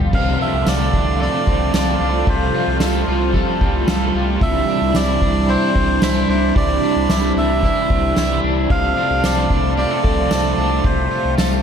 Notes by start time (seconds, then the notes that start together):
Already playing: G2 D3 F3 G3 B3 F4 G4
0.00 floor tom
0.13 C2 C3 D3 F3 A3 C4 D4 F4 A4 F5, kick, crash
0.39 C4 D4 A4 E5, ride
0.53 C2
0.65 C2 C3 F3 C4 D4 A4 D5, snare, tambourine
0.92 C2 C4 D4 A4, kick, ride
1.19 F3 C4 D4 A4 D5, ride
1.45 C2 C4 D4 A4, kick, ride
1.72 C2 C3 F3 C4 D4 A4 D5, snare, tambourine
1.99 C2 C4 D4 A4, ride
2.26 C2 C3 F3 G3 F4 A4 C5, kick
2.52 G3 F4 A4, ride
2.67 C2
2.80 C2 C3 F3 G3 F4 A4, snare, ride, tambourine
3.06 C2 G3 F4 A4, ride
3.33 F3 G3 F4 A4, kick, ride
3.59 C2 G3 F4 A4, kick
3.87 C2 C3 F3 G3 F4 A4, snare, tambourine
4.13 C2 G3 F4 A4, ride
4.40 C2 C3 E3 G3 C4 D4 E4 E5, kick
4.67 C4 D4 E4, ride
4.81 C2
4.94 C2 C3 G3 C4 D4 E4 D5, snare, tambourine
5.21 C2 C4 D4 E4, kick
5.47 G3 C4 D4 E4 C5, ride
5.74 C2 C4 D4 E4, kick, ride
6.01 C2 C3 G3 C4 D4 E4 C5, snare, tambourine
6.28 C2 C4 D4 E4 C5, ride
6.54 C2 C3 G3 C4 D4 E4 D5, kick, ride
6.82 C4 D4 E4, ride
6.96 C2
7.08 C2 C3 G3 C4 D4 E4, snare, ride, tambourine
7.35 C2 C4 D4 E4 E5, ride
7.61 G3 C4 D4, kick, ride
7.65 E4
7.89 C2 C4 D4 E4, kick, ride
8.15 C2 C3 G3 C4 D4 E4, snare, tambourine
8.42 C2 D4 E4, ride
8.46 C4
8.69 C2 C3 F3 A3 C4 D4 F4 F5, kick, ride
8.96 C4 D4 A4
9.10 C2
9.23 C2 C3 F3 C4 D4 A4 C5 D5, snare, tambourine
9.50 C2 C4 D4 A4, kick, ride
9.76 F3 C4 D4 G4 A4 D5, ride
9.91 A4
10.03 C2 C4 D4 A4, kick
10.30 C2 C3 F3 C4 D4 A4, snare, ride, tambourine
10.56 C2 C4 D4 A4, ride
10.84 C2 C3 G3 G4 C5, kick, ride
11.11 F4, ride
11.25 C2
11.38 C2 A4, snare, ride, tambourine